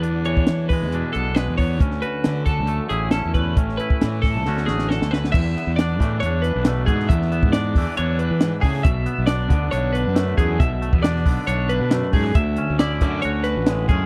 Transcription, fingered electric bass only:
\new Staff \with { instrumentName = "Fingered electric bass" } { \clef bass \time 4/4 \key e \mixolydian \tempo 4 = 136 e,4 e8. e,8 r16 b,,8. e,8. | d,8 r8 d8. d,8 r16 a,,8. e,8. | a,,8 r8 a,8. cis,16 d,8 a,,8. d,8. | e,8 r16 e,8. a,8 e,8. b,,8. gis,8 |
e,8. gis,8. e,16 r16 e,8. e8 r16 cis8 | b,,8 r16 b,,8. d,8 b,,8. fis,8. e,8 | b,,8. e,8. b,,16 r16 b,,8. b,8 r16 gis,8 | d,8 r16 d,8. fis,8 d,8. a,,8. fis,8 | }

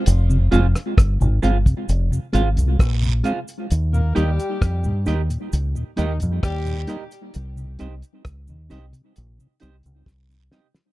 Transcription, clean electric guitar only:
\new Staff \with { instrumentName = "Clean electric guitar" } { \time 4/4 \key f \minor \tempo 4 = 66 r8 <f' aes' c'' f''>8 r8 <f' aes' c'' f''>8 r8 <f' aes' c'' f''>8 r8 <f' aes' c'' f''>8 | r8 <ees' g' bes' ees''>8 r8 <ees' g' bes' ees''>8 r8 <ees' g' bes' ees''>8 r8 <ees' g' bes' ees''>8 | r8 <ees' g' c'' ees''>8 r8 <ees' g' c'' ees''>8 r8 <ees' g' c'' ees''>8 r8 <ees' g' c'' ees''>8 | }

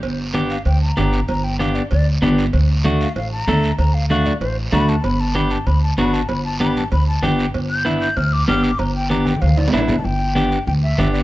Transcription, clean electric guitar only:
\new Staff \with { instrumentName = "Clean electric guitar" } { \time 4/4 \key g \major \tempo 4 = 192 r4 <b d' g'>8 r4. <b d' g'>8 r8 | r4 <b d' g'>8 r4. <b d' g'>8 r8 | r4 <a d' fis'>8 r4. <a d' a'>8 r8 | r4 <a d' fis'>8 r4. <a d' fis'>8 r8 |
r4 <b d' g'>8 r4. <b d' fis'>8 r8 | r4 <b d' g'>8 r4. <b d' g'>8 r8 | r4 <b d' e'>8 r4. <b d' g'>8 r8 | r4 <b d' g'>8 r4. <b d' e'>8 r8 |
r4 <b d' g'>8 r4. <b d' g'>8 r8 | }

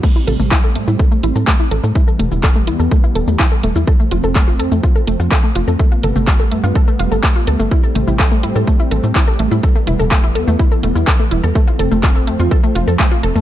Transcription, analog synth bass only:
\new Staff \with { instrumentName = "Analog synth bass" } { \clef bass \time 4/4 \key a \minor \tempo 4 = 125 r8 a,,16 a,,8. a,16 a,16 r8 a,,16 a,16 r8 a,,16 a,16 | r8 e,,16 e,,8. e,16 e,16 r8 e,,16 e,16 r8 e,,16 e,16 | r8 f,,16 f,,8. f,16 f,16 r8 f,,16 f,16 r8 f,,16 f,16 | r8 g,,16 g,,8. g,16 g,16 r8 f,,16 g,,16 r8 d,16 g,,16 |
r8 a,,16 a,,8. a,16 a,16 r8 a,,16 a,16 r8 a,,16 a,16 | r8 e,,16 e,,8. e,16 e,16 r8 e,,16 e,16 r8 e,,16 e,16 | r8 f,,16 f,,8. f,16 f,16 r8 f,,16 f,16 r8 f,,16 f,16 | }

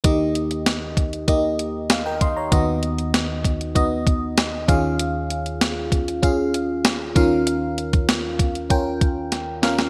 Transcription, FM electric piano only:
<<
  \new Staff \with { instrumentName = "FM electric piano" } { \time 4/4 \key ees \mixolydian \tempo 4 = 97 << { r2. f''16 <bes' g''>16 <ees'' c'''>16 <des'' bes''>16~ | <des'' bes''>16 r2. r8. | r1 | r1 | } \\ { <bes ees' g' ees''>4. r8 <bes ees' g' ees''>4 r4 | <b dis' fis' dis''>4. r8 <b dis' fis' dis''>4 r8 <des' f' aes' f''>8~ | <des' f' aes' f''>4 r4 <des' f' aes' f''>4 r8 <des' f' bes' f''>8~ | <des' f' bes' f''>4 r4 <des' f' bes' g''>4 r8 <des' f' bes' f''>8 | } >> }
  \new Staff \with { instrumentName = "FM electric piano" } { \clef bass \time 4/4 \key ees \mixolydian <ees, ees>1 | <dis, dis>2.~ <dis, dis>8 <ees, ees>8~ | <ees, ees>2.~ <ees, ees>8 <ees, ees>8~ | <ees, ees>2.~ <ees, ees>8 r8 | }
>>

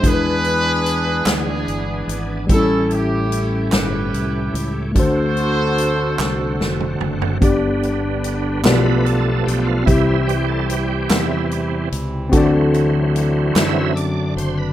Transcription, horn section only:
\new Staff \with { instrumentName = "Horn section" } { \time 6/8 \key g \major \tempo 4. = 49 << { b'4. gis'4 r8 | a'8 g'4 b'4 r8 | c''2~ c''8 r8 | r2. |
r2. | r2. | } \\ { <d' gis'>4. <b d'>4. | <cis' e'>8 <cis' e'>4 <e' g'>4. | <fis' a'>2~ <fis' a'>8 r8 | r2. |
r2. | r2. | } >> }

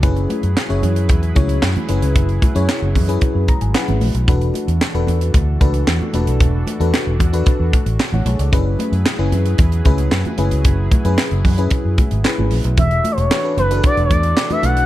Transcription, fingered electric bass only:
\new Staff \with { instrumentName = "Fingered electric bass" } { \clef bass \time 4/4 \key e \mixolydian \tempo 4 = 113 fis,,8 r16 fis,16 r16 fis,,16 fis,8 e,8 cis,8 fis,16 r16 fis,,16 cis,16 | fis,,8 r16 fis,16 r16 fis,,16 fis,8 r16 fis,16 r16 gis,,16 r16 gis,,16 ais,,16 b,,16 | e,,8 r16 e,16 r16 e,,16 e,8 d,8 cis,8 e,16 r16 e,,16 b,,16 | e,,8 r16 e,16 r16 e,,16 e,8 r16 e,16 r16 a,,16 r16 a,,16 b,,16 cis,16 |
fis,,8 r16 fis,16 r16 fis,,16 fis,8 e,8 cis,8 fis,16 r16 fis,,16 cis,16 | fis,,8 r16 fis,16 r16 fis,,16 fis,8 r16 fis,16 r16 gis,,16 r16 gis,,16 ais,,16 b,,16 | e,,8 r16 e,,16 r8 fis,,8 r16 e,,16 e,8 r8 b,,8 | }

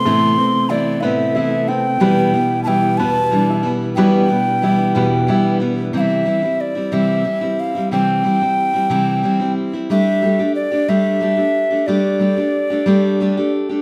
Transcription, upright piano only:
\new Staff \with { instrumentName = "Upright piano" } { \time 6/8 \key c \major \tempo 4. = 61 <a c' e'>8 c'8 e'8 b'8 e'8 c'8 | <g b'>8 b8 e'8 b'8 d'16 e'16 b8 | <g b'>8 b8 e'8 b'8 e'8 b8 | r2. |
r2. | r2. | r2. | }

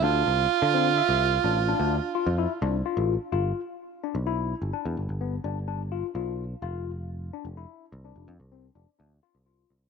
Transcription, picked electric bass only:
\new Staff \with { instrumentName = "Picked electric bass" } { \clef bass \time 7/4 \key g \mixolydian \tempo 4 = 127 d,8 c,8 r16 d4 c,8. a,,8. d,8 r8 f,8 r16 c,8 r16 a,,8 r16 | g,,8 r4 r16 b,,4 g,,16 r16 e,16 g,,16 g,,8. g,,4. b,,4 | f,,4.~ f,,16 f,,8 r8 c,8 f,,16 f,16 c,8. f,,16 r16 d,8 r16 c,8. c,8 | }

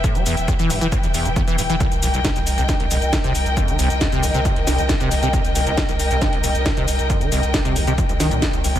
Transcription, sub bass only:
\new Staff \with { instrumentName = "Sub bass" } { \clef bass \time 4/4 \key c \lydian \tempo 4 = 136 r16 e,,16 e,,16 e,,16 r16 e,,16 e,,16 e,,16 r16 e,,16 e,,16 e,,16 r16 e,,16 e,,16 e,,16 | r16 c,16 c,16 c,16 r16 c,16 c,16 c,16 r16 c,16 c,16 c,16 r16 c,16 c,16 c,16 | r16 c,16 c,16 c,16 r16 c,16 c,16 c,16 r16 c,16 c,16 c,16 r16 c,16 c,16 c,16 | r16 c,16 c,16 c,16 r16 c,16 c,16 c,16 r16 c,16 c,16 c,16 r16 c,16 c,16 c,16 |
r16 c,16 c,16 c,16 r16 c,16 c,16 c,16 r16 c,16 c,16 c,16 r16 c,16 c,16 c,16 | }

